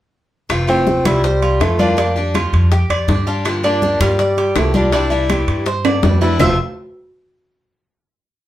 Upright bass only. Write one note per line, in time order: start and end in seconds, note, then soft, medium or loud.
0.50 1.01 F1 medium
1.05 1.57 C2 medium
1.60 2.47 F2 medium
2.53 2.87 F2 medium
2.89 3.07 F2 medium
3.08 3.95 G2 medium
4.00 4.52 G2 medium
4.55 5.42 C2 medium
5.47 5.99 G2 medium
6.03 6.36 F2 medium
6.39 6.57 F1 medium